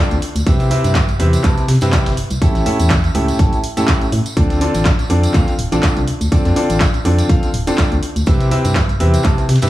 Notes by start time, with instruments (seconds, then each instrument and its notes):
Already playing: grand piano D3 C4 D4 F4 A4 D5
0.11 fm bass D2, closed hi-hat, tambourine
0.22 closed hi-hat, open hi-hat
0.36 fm bass D2, closed hi-hat, tambourine
0.47 fm bass C2, grand piano C3 C4 E4 G4 B4 E5, kick, closed hi-hat, tambourine
0.60 snare, closed hi-hat, tambourine
0.71 grand piano C3 C4 E4 G4 B4 E5, closed hi-hat, open hi-hat
0.84 fm bass G2, snare, closed hi-hat, tambourine
0.95 kick, snare, clap, closed hi-hat, tambourine
1.08 closed hi-hat, tambourine
1.20 fm bass E2, grand piano C3 C4 E4 G4 B4 E5, closed hi-hat, open hi-hat
1.33 closed hi-hat, tambourine
1.44 fm bass C2, grand piano C3 C4 E4 G4 B4 A5, kick, clap, closed hi-hat, tambourine
1.57 closed hi-hat, tambourine
1.68 fm bass C3, snare, closed hi-hat, open hi-hat
1.81 fm bass G2, grand piano C3 C4 E4 G4 B4 E5, snare, closed hi-hat, tambourine
1.92 kick, snare, clap, closed hi-hat, tambourine
2.06 fm bass G1, snare, closed hi-hat, tambourine
2.17 closed hi-hat, open hi-hat
2.30 fm bass C2, closed hi-hat, tambourine
2.42 grand piano A2 C#4 E4 G4 A4 E5, kick, closed hi-hat, tambourine
2.55 fm bass A1, snare, closed hi-hat, tambourine
2.66 grand piano A2 C#4 E4 G4 A4 E5, closed hi-hat, open hi-hat
2.79 fm bass E2, closed hi-hat, tambourine
2.90 kick, snare, clap, closed hi-hat
3.04 closed hi-hat, tambourine
3.15 fm bass C#2, grand piano A2 C#4 E4 G4 A4 E5, closed hi-hat, open hi-hat
3.28 snare, closed hi-hat, tambourine
3.39 fm bass G1, grand piano A2 C#4 E4 G4 A4 A5, kick, closed hi-hat, tambourine
3.53 closed hi-hat, tambourine
3.64 closed hi-hat, open hi-hat
3.77 grand piano A2 C#4 E4 G4 A4 E5, snare, closed hi-hat, tambourine
3.88 kick, snare, clap, closed hi-hat, tambourine
4.01 closed hi-hat, tambourine
4.12 fm bass A2, closed hi-hat, open hi-hat
4.26 closed hi-hat, tambourine
4.37 fm bass D2, grand piano D3 C4 D4 F4 A4 D5, kick, closed hi-hat, tambourine
4.50 snare, closed hi-hat, tambourine
4.61 grand piano D3 C4 D4 F4 A4 D5, closed hi-hat, open hi-hat
4.74 fm bass A1, snare, closed hi-hat, tambourine
4.85 kick, snare, clap, closed hi-hat, tambourine
4.99 closed hi-hat, tambourine
5.10 fm bass F2, grand piano D3 C4 D4 F4 A4 D5, closed hi-hat, open hi-hat
5.23 closed hi-hat, tambourine
5.34 fm bass D2, grand piano D3 C4 D4 F4 A4 F5, kick, clap, closed hi-hat, tambourine
5.48 closed hi-hat, tambourine
5.59 fm bass D1, closed hi-hat, open hi-hat
5.72 fm bass A1, grand piano D3 C4 D4 F4 A4 D5, closed hi-hat, tambourine
5.83 kick, snare, clap, closed hi-hat, tambourine
5.97 fm bass C2, closed hi-hat, tambourine
6.07 closed hi-hat, open hi-hat
6.21 fm bass D2, closed hi-hat, tambourine
6.32 grand piano D3 C4 D4 F4 A4 D5, kick, closed hi-hat, tambourine
6.45 fm bass F2, snare, closed hi-hat, tambourine
6.56 grand piano D3 C4 D4 F4 A4 D5, closed hi-hat, open hi-hat
6.70 fm bass A1, closed hi-hat, tambourine
6.80 kick, snare, clap, closed hi-hat, tambourine
6.94 closed hi-hat, tambourine
7.05 fm bass F2, grand piano D3 C4 D4 F4 A4 D5, closed hi-hat, open hi-hat
7.18 snare, closed hi-hat, tambourine
7.29 grand piano D3 C4 D4 F4 A4 F5, kick, closed hi-hat
7.43 closed hi-hat, tambourine
7.54 fm bass D1, closed hi-hat, open hi-hat
7.67 grand piano D3 C4 D4 F4 A4 D5, snare, closed hi-hat, tambourine
7.78 fm bass C2, kick, snare, clap, closed hi-hat, tambourine
7.92 fm bass D2, closed hi-hat, tambourine
8.03 closed hi-hat, open hi-hat
8.16 fm bass D2, closed hi-hat, tambourine
8.26 fm bass C2, grand piano C3 C4 E4 G4 B4 E5, kick, closed hi-hat, tambourine
8.40 snare, closed hi-hat, tambourine
8.51 grand piano C3 C4 E4 G4 B4 E5, closed hi-hat, open hi-hat
8.64 fm bass G2, snare, closed hi-hat, tambourine
8.75 kick, snare, clap, closed hi-hat, tambourine
8.89 closed hi-hat, tambourine
9.00 fm bass E2, grand piano C3 C4 E4 G4 B4 E5, closed hi-hat, open hi-hat
9.14 closed hi-hat, tambourine
9.23 fm bass C2, grand piano C3 C4 E4 G4 B4 A5, kick, clap, closed hi-hat, tambourine
9.38 closed hi-hat, tambourine
9.49 fm bass C3, snare, closed hi-hat, open hi-hat
9.56 snare, closed hi-hat
9.62 fm bass G2, grand piano C3 C4 E4 G4 B4 E5, snare, closed hi-hat, tambourine